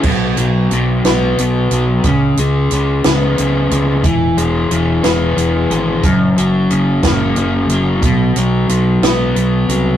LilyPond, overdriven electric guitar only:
\new Staff \with { instrumentName = "Overdriven electric guitar" } { \clef bass \time 6/8 \key fis \mixolydian \tempo 4. = 60 b,8 fis8 b,8 b8 b,8 fis8 | cis8 gis8 cis8 b8 cis8 gis8 | e8 gis8 e8 b8 e8 gis8 | fis,8 fis8 cis8 ais8 cis8 fis8 |
b,8 fis8 b,8 b8 b,8 fis8 | }